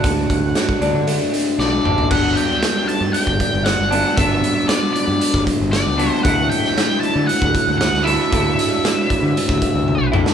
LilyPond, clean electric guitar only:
\new Staff \with { instrumentName = "Clean electric guitar" } { \clef bass \time 4/4 \key g \major \tempo 4 = 116 <d fis a d'>4 fis8 d'8 a8 d8 fis8 d'8 | <g, d fis b d'>2.~ <g, d fis b d'>8 <g, d fis b d'>8 | <g, d fis b d'>2.~ <g, d fis b d'>8 <g, d fis b d'>8 | <d fis a e'>2.~ <d fis a e'>8 <d fis a e'>8 |
<d fis a e'>2.~ <d fis a e'>8 <d fis a e'>8 | }